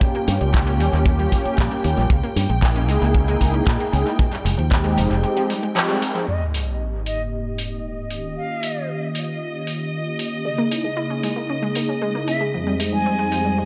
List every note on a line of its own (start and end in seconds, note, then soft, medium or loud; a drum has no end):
0.00 0.10 G3 medium
0.00 0.51 A#3 medium
0.00 0.51 C#4 medium
0.00 0.51 F4 medium
0.00 0.51 G4 medium
0.00 6.29 G5 medium
0.00 kick loud
0.00 closed hi-hat medium
0.15 0.23 A#3 loud
0.15 closed hi-hat soft
0.28 0.37 G2 loud
0.28 0.33 C#4 medium
0.28 open hi-hat loud
0.41 0.80 C#2 loud
0.41 0.49 G3 medium
0.41 closed hi-hat soft
0.54 1.03 A#3 medium
0.54 1.03 C#4 medium
0.54 0.59 D#4 loud
0.54 1.03 F4 medium
0.54 1.04 G4 medium
0.54 kick loud
0.54 clap loud
0.54 closed hi-hat medium
0.67 0.75 C#4 loud
0.67 closed hi-hat soft
0.80 0.90 D#2 medium
0.80 0.88 G3 loud
0.80 open hi-hat medium
0.93 1.26 D#2 medium
0.93 1.05 A#3 medium
0.93 closed hi-hat soft
1.06 1.29 A#3 loud
1.06 1.14 C#4 medium
1.06 1.29 C#4 medium
1.06 1.29 F4 medium
1.06 1.30 G4 loud
1.06 kick loud
1.06 closed hi-hat medium
1.19 1.27 G3 loud
1.19 closed hi-hat soft
1.32 1.37 A#3 medium
1.32 1.68 A#3 loud
1.32 1.69 C#4 medium
1.32 1.69 F4 medium
1.32 1.69 G4 loud
1.32 kick medium
1.32 open hi-hat medium
1.45 1.53 C#4 medium
1.45 muted fingered electric bass stroke soft
1.45 closed hi-hat soft
1.58 1.68 A#1 medium
1.58 1.70 G3 loud
1.58 kick loud
1.58 clap loud
1.58 closed hi-hat medium
1.71 2.09 A#3 medium
1.71 1.79 A#3 loud
1.71 2.09 C#4 medium
1.71 2.09 F4 medium
1.71 2.09 G4 medium
1.71 closed hi-hat soft
1.84 1.94 D#2 medium
1.84 1.92 C#4 medium
1.84 open hi-hat medium
1.97 2.07 A#1 medium
1.97 2.09 G3 medium
1.97 closed hi-hat soft
2.10 2.20 C#2 medium
2.10 2.18 G#3 medium
2.10 kick loud
2.10 closed hi-hat medium
2.23 2.31 A#3 loud
2.23 closed hi-hat soft
2.36 2.46 G2 loud
2.36 2.41 C#4 medium
2.36 open hi-hat loud
2.49 2.88 A#1 loud
2.49 2.57 G#3 medium
2.49 closed hi-hat soft
2.62 3.11 A#3 medium
2.62 3.12 D#4 medium
2.62 3.12 E4 medium
2.62 2.68 E4 loud
2.62 3.12 G#4 medium
2.62 kick loud
2.62 clap loud
2.62 closed hi-hat medium
2.76 2.84 C#4 loud
2.76 closed hi-hat soft
2.88 2.98 C#2 loud
2.88 2.97 G#3 loud
2.88 open hi-hat medium
3.02 3.35 C#2 loud
3.02 3.14 A#3 medium
3.02 closed hi-hat soft
3.14 3.38 A#3 loud
3.14 3.23 C#4 medium
3.14 3.38 D#4 medium
3.14 3.38 E4 medium
3.14 3.38 G#4 loud
3.14 kick loud
3.14 closed hi-hat medium
3.28 3.36 G#3 loud
3.28 closed hi-hat soft
3.40 3.60 C#2 medium
3.40 3.77 A#3 loud
3.40 3.46 A#3 medium
3.40 3.77 D#4 medium
3.40 3.77 E4 medium
3.40 3.77 G#4 loud
3.40 kick medium
3.40 open hi-hat medium
3.54 3.62 C#4 medium
3.54 closed hi-hat soft
3.67 3.76 A#2 medium
3.67 3.79 G#3 loud
3.67 kick loud
3.67 clap loud
3.67 closed hi-hat medium
3.79 4.17 A#3 medium
3.79 3.88 A#3 loud
3.79 4.18 D#4 medium
3.79 4.18 E4 medium
3.79 4.18 G#4 medium
3.79 closed hi-hat soft
3.93 4.03 C#2 loud
3.93 4.01 C#4 medium
3.93 open hi-hat medium
4.06 4.18 G#3 medium
4.06 closed hi-hat soft
4.19 4.27 F3 medium
4.19 kick loud
4.19 closed hi-hat medium
4.32 4.40 G3 loud
4.32 clap soft
4.32 closed hi-hat soft
4.45 4.55 F1 loud
4.45 4.50 G#3 medium
4.45 open hi-hat loud
4.58 4.99 D#2 loud
4.58 4.66 F3 medium
4.58 closed hi-hat soft
4.71 5.20 G#3 medium
4.71 4.76 C4 loud
4.71 5.21 C4 medium
4.71 5.21 D#4 medium
4.71 5.21 G4 medium
4.71 kick loud
4.71 clap loud
4.71 closed hi-hat medium
4.84 4.92 G#3 loud
4.84 closed hi-hat soft
4.97 5.07 F1 medium
4.97 5.05 F3 loud
4.97 open hi-hat medium
5.10 5.24 F1 medium
5.10 5.22 G3 medium
5.10 closed hi-hat soft
5.23 5.31 G#3 medium
5.23 5.46 G#3 loud
5.23 5.47 C4 medium
5.23 5.47 D#4 medium
5.23 5.47 G4 loud
5.23 closed hi-hat medium
5.37 5.45 F3 loud
5.37 closed hi-hat soft
5.50 5.54 G3 medium
5.50 open hi-hat loud
5.63 5.71 G#3 medium
5.63 closed hi-hat soft
5.75 5.87 F3 loud
5.75 5.87 G#3 medium
5.75 5.87 C4 medium
5.75 5.87 D#4 medium
5.75 5.87 G4 medium
5.75 clap loud
5.75 closed hi-hat medium
5.89 5.97 G3 loud
5.89 6.12 G#3 medium
5.89 6.12 C4 medium
5.89 6.12 D#4 medium
5.89 6.12 A#4 medium
5.89 closed hi-hat soft
6.02 6.10 G#3 medium
6.02 open hi-hat medium
6.15 6.27 F3 medium
6.15 6.26 G#3 medium
6.15 6.26 C4 medium
6.15 6.26 D#4 medium
6.15 6.27 G4 loud
6.15 closed hi-hat soft
6.27 8.07 G#2 medium
6.27 8.07 A#3 medium
6.27 8.07 C4 medium
6.27 8.08 D#4 medium
6.27 8.08 G4 medium
6.27 13.65 D#5 medium
6.27 6.43 D#5 medium
6.27 sub drop medium
6.54 open hi-hat medium
7.06 7.21 D#5 medium
7.06 open hi-hat medium
7.58 open hi-hat medium
8.10 10.42 D#3 medium
8.10 10.42 A#3 medium
8.10 10.42 C#4 medium
8.10 10.43 F4 medium
8.10 10.43 G4 medium
8.10 open hi-hat medium
8.37 8.89 F5 medium
8.63 open hi-hat loud
9.15 open hi-hat medium
9.67 open hi-hat medium
10.19 open hi-hat medium
10.44 12.50 C#3 medium
10.44 10.53 G#3 medium
10.44 12.51 A#3 medium
10.44 12.51 D#4 medium
10.44 12.51 E4 medium
10.44 12.51 G#4 medium
10.44 10.60 D#5 medium
10.58 10.66 A#3 loud
10.71 10.76 C#4 medium
10.71 open hi-hat loud
10.84 10.92 G#3 medium
10.84 11.00 D#5 medium
10.97 11.02 E4 loud
11.10 11.18 C#4 loud
11.23 11.31 G#3 loud
11.23 open hi-hat medium
11.36 11.48 A#3 medium
11.50 11.58 C#4 medium
11.63 11.71 G#3 loud
11.75 11.81 A#3 medium
11.75 open hi-hat medium
11.89 11.97 C#4 medium
12.02 12.14 G#3 loud
12.15 12.23 A#3 medium
12.28 12.36 C#4 medium
12.28 12.43 E5 medium
12.28 open hi-hat medium
12.41 12.53 G#3 medium
12.53 13.65 F2 medium
12.53 12.62 F3 medium
12.53 13.65 G3 medium
12.53 13.65 G#3 medium
12.53 13.65 C4 medium
12.53 13.65 D#4 medium
12.67 12.75 G3 loud
12.80 12.85 G#3 medium
12.80 open hi-hat loud
12.93 13.01 F3 medium
12.93 13.65 G#5 loud
13.06 13.11 C4 loud
13.19 13.27 G#3 loud
13.31 13.40 F3 loud
13.31 open hi-hat medium
13.45 13.57 G3 medium
13.58 13.65 G#3 medium